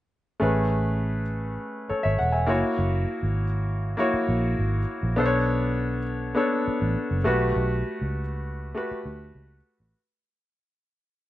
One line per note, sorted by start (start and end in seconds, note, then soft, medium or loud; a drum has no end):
0.40 1.57 A1 medium
0.40 1.20 A3 medium
0.40 1.21 C#4 medium
0.40 1.21 G#4 medium
0.40 1.22 B4 medium
1.89 2.04 A4 soft
1.89 2.02 C#5 medium
1.89 muted fingered electric bass stroke soft
2.03 2.18 G#1 medium
2.03 2.19 C#5 medium
2.03 2.18 E5 medium
2.19 2.49 E1 medium
2.19 2.33 F#5 medium
2.32 2.62 E5 soft
2.32 2.62 G#5 medium
2.46 2.62 F#1 medium
2.46 3.43 A#3 medium
2.46 3.44 E4 medium
2.46 3.44 F#4 medium
2.46 3.45 C#5 medium
2.79 3.04 F#1 medium
3.23 3.94 G#1 medium
3.97 4.78 A#3 medium
3.97 4.79 E4 medium
3.97 4.79 F#4 medium
3.97 4.79 C#5 medium
4.14 muted fingered electric bass stroke soft
4.29 4.54 A#1 medium
4.59 4.84 G#1 medium
5.03 5.18 A#1 medium
5.16 6.34 B1 medium
5.16 5.97 B3 medium
5.16 5.97 D4 medium
5.16 5.98 A4 medium
5.16 5.25 C5 medium
5.26 6.02 C#5 medium
6.35 7.16 B3 medium
6.35 7.16 D4 medium
6.35 7.17 A4 medium
6.35 7.17 C#5 medium
6.68 muted fingered electric bass stroke soft
6.82 6.95 A1 medium
7.11 7.24 F#1 medium
7.24 7.52 B1 medium
7.24 8.21 A3 medium
7.24 8.21 F#4 medium
7.24 8.22 G4 medium
7.24 8.22 B4 medium
7.56 7.82 B1 medium
8.01 8.72 C#2 medium
8.75 9.55 A3 medium
8.75 9.56 F#4 medium
8.75 9.56 G4 medium
8.75 9.57 B4 medium
8.91 muted fingered electric bass stroke soft
9.05 9.31 D2 medium
9.35 9.60 C#2 medium
9.80 9.93 A1 medium